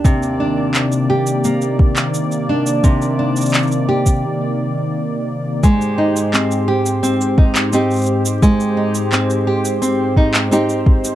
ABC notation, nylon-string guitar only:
X:1
M:4/4
L:1/8
Q:1/4=86
K:Ablyd
V:1 name="Nylon-string guitar"
C, D2 G B,3 D | C, D2 G z4 | A, E C G C E [CEG]2 | A, E C G C E [CEG]2 |]